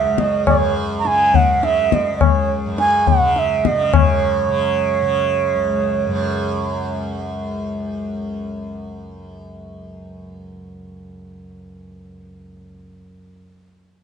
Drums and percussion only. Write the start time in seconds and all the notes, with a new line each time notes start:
0.18 tabla ke
0.47 tabla na, tabla ge
1.05 tabla te
1.34 tabla tin, tabla ge
1.63 tabla te
1.92 tabla ke
2.21 tabla na, tabla ge
2.78 tabla te
3.07 tabla tin, tabla ge
3.36 tabla te
3.65 tabla ke
3.94 tabla na, tabla ge